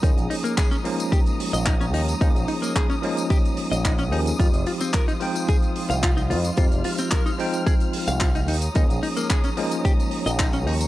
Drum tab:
HH |xxoxxxoxxxoxxxox|xxoxxxoxxxoxxxox|xxoxxxoxxxoxxxox|xxoxxxoxxxoxxxox|
TB |xx-xxx-xxx-xxx-x|xx-x-x-xxx-xxx-x|xx-xxx-xxx-xxx-x|xx-xxx-xxx-xxx-x|
CP |----x-------x---|----x-------x---|----x-------x---|----x-------x---|
BD |o---o---o---o---|o---o---o---o---|o---o---o---o---|o---o---o---o---|

HH |xxoxxxoxxxoxxxox|
TB |xx-xxx-xxx-xxx-x|
CP |----x-------x---|
BD |o---o---o---o---|